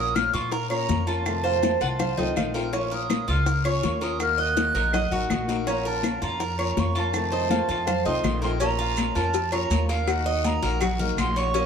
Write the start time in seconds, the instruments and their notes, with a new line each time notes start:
Already playing: upright bass A#1, steel-string acoustic guitar F3 A#3 C#4 F4, cuban tres A#4, flute D#6
0.15 steel-string acoustic guitar F3 A#3 C#4 F4, flute F6, high bongo, high conga, short guiro, claves, maracas
0.33 upright bass A#2, cuban tres F4, flute C#6, high bongo, short guiro, maracas
0.51 cuban tres A#4, flute A#5, muted steel-string acoustic guitar stroke, high bongo, high conga, long guiro, maracas
0.70 steel-string acoustic guitar A#3 C#4 F4, cuban tres C#5, flute A#5, high conga, claves, maracas
0.88 upright bass F2, steel-string acoustic guitar F3 A#3 C#4 F4, high bongo, low bongo, high conga, short guiro, maracas
1.07 steel-string acoustic guitar A#3 C#4 F4, cuban tres F4, flute A5, high bongo, high conga, short guiro, maracas
1.25 steel-string acoustic guitar C3 D#3 A3 C4 F4, high bongo, high conga, long guiro, claves, maracas
1.44 cuban tres C5, nylon-string guitar F5, high bongo, high conga, maracas
1.62 steel-string acoustic guitar D#3 A3 C4 F4, high bongo, high conga, short guiro, maracas
1.81 upright bass C2, cuban tres F4, nylon-string guitar F#5, high bongo, short guiro, maracas
1.99 cuban tres C5, nylon-string guitar F5, muted steel-string acoustic guitar stroke, high bongo, high conga, low conga, long guiro, claves, maracas
2.17 upright bass C2, steel-string acoustic guitar D#3 A3 C4 F4, cuban tres D#4, nylon-string guitar D#5, high conga, low conga, maracas
2.36 upright bass A#1, steel-string acoustic guitar D#3 A3 C4 F4, nylon-string guitar F5, high bongo, low bongo, high conga, short guiro, claves, maracas
2.54 steel-string acoustic guitar D#3 A3 C4 F4, cuban tres A#4, high bongo, short guiro, maracas
2.73 steel-string acoustic guitar F3 A#3 C#4 F4, cuban tres C#4, flute C#6, high bongo, high conga, long guiro, maracas
2.91 cuban tres A#4, flute D#6, high bongo, high conga, maracas
3.09 steel-string acoustic guitar F3 A#3 C#4 F4, high bongo, high conga, short guiro, claves, maracas
3.28 upright bass C#2, cuban tres F4, flute F6, high bongo, high conga, short guiro, maracas
3.46 cuban tres A#4, muted steel-string acoustic guitar stroke, high bongo, high conga, long guiro, maracas
3.65 steel-string acoustic guitar A#3 C#4 F4, cuban tres C#5, flute C#6, high conga, claves, maracas
3.82 upright bass D#2, steel-string acoustic guitar F3 A#3 C#4 F4, high bongo, low bongo, high conga, short guiro, maracas
4.01 steel-string acoustic guitar A#3 C#4 F4, cuban tres A#4, flute D#6, high bongo, high conga, short guiro, maracas
4.20 steel-string acoustic guitar D#3 A#3 D#4 F#4, flute F6, high bongo, high conga, long guiro, claves, maracas
4.38 cuban tres D#5, flute F#6, high bongo, high conga, maracas
4.56 steel-string acoustic guitar D#3 A#3 D#4 F#4, high bongo, high conga, short guiro, maracas
4.74 upright bass A#1, cuban tres A#4, nylon-string guitar D#5, high bongo, short guiro, maracas
4.93 cuban tres D#5, nylon-string guitar F#5, muted steel-string acoustic guitar stroke, high bongo, high conga, low conga, long guiro, claves, maracas
5.11 upright bass A1, steel-string acoustic guitar A#3 D#4 F#4, cuban tres F#4, nylon-string guitar F5, high conga, low conga, maracas
5.30 upright bass A#1, steel-string acoustic guitar D#3 A#3 D#4 F#4, nylon-string guitar D#5, high bongo, low bongo, high conga, short guiro, claves, maracas
5.48 steel-string acoustic guitar A#3 D#4 F#4, cuban tres A#4, high bongo, high conga, short guiro, maracas
5.66 steel-string acoustic guitar F3 A#3 C#4 F4, cuban tres C#4, flute A#5, high bongo, long guiro, maracas
5.85 cuban tres A#4, flute A5, high bongo, high conga, maracas
6.03 steel-string acoustic guitar F3 A#3 C#4 F4, high bongo, high conga, short guiro, claves, maracas
6.22 upright bass F2, cuban tres F4, flute A#5, high bongo, short guiro, maracas
6.40 cuban tres A#4, muted steel-string acoustic guitar stroke, high bongo, high conga, long guiro, maracas
6.59 steel-string acoustic guitar A#3 C#4 F4, cuban tres C#5, high conga, claves, maracas
6.77 upright bass F2, steel-string acoustic guitar F3 A#3 C#4 F4, flute C#6, high bongo, low bongo, high conga, short guiro, maracas
6.95 steel-string acoustic guitar A#3 C#4 F4, cuban tres F4, flute A5, high bongo, high conga, short guiro, maracas
7.13 steel-string acoustic guitar C3 D#3 A3 C4 F4, high bongo, high conga, long guiro, claves, maracas
7.32 cuban tres C5, nylon-string guitar D#5, high bongo, high conga, maracas
7.50 steel-string acoustic guitar D#3 A3 C4 F4, nylon-string guitar F5, high bongo, high conga, short guiro, maracas
7.69 upright bass F2, cuban tres F4, high bongo, short guiro, maracas
7.87 cuban tres C5, nylon-string guitar F5, muted steel-string acoustic guitar stroke, high bongo, high conga, low conga, long guiro, claves, maracas
8.05 upright bass C2, steel-string acoustic guitar D#3 A3 C4 F4, cuban tres D#4, nylon-string guitar D#5, flute C6, high conga, maracas
8.23 upright bass A#1, steel-string acoustic guitar D#3 A3 F4, nylon-string guitar F5, high bongo, low bongo, high conga, short guiro, claves, maracas
8.42 steel-string acoustic guitar D#3 A3 C4 F4, cuban tres A#4, flute C6, high bongo, short guiro, maracas
8.60 steel-string acoustic guitar F3 A#3 C#4 F4, cuban tres C#4, flute A#5, cowbell, high conga, long guiro, maracas
8.79 cuban tres F4, high conga, maracas
8.97 cowbell, high conga, short guiro, claves, maracas
9.15 upright bass F2, steel-string acoustic guitar A#3 C#4 F4, cuban tres A#4, flute A5, high conga, short guiro, maracas
9.34 muted steel-string acoustic guitar stroke, cowbell, high conga, long guiro, maracas
9.52 steel-string acoustic guitar A#3 C#4 F4, cuban tres C#5, flute A#5, cowbell, high conga, claves, maracas
9.70 upright bass D#2, steel-string acoustic guitar F3 A#3 C#4 F4, cowbell, high conga, short guiro, maracas
9.89 cuban tres A#4, flute F5, cowbell, high conga, short guiro, maracas
10.07 steel-string acoustic guitar D#3 A#3 D#4 F#4, flute F#5, cowbell, high conga, long guiro, claves, maracas
10.26 cuban tres D#5, high conga, maracas
10.44 flute A#5, cowbell, high conga, short guiro, maracas
10.62 upright bass A#1, steel-string acoustic guitar A#3 D#4 F#4, cuban tres A#4, cowbell, short guiro, maracas
10.81 cuban tres F#4, muted steel-string acoustic guitar stroke, cowbell, high conga, low conga, long guiro, claves, maracas
10.99 steel-string acoustic guitar A#3 D#4 F#4, cuban tres A#4, high conga, low conga, maracas
11.17 upright bass A#1, steel-string acoustic guitar D#3 A#3 D#4 F#4, flute C6, cowbell, high conga, short guiro, claves, maracas
11.36 cuban tres C#5, flute C#6, short guiro, maracas
11.54 steel-string acoustic guitar F3 A#3 C#4 F4, cuban tres C#4, cowbell, high conga, long guiro, maracas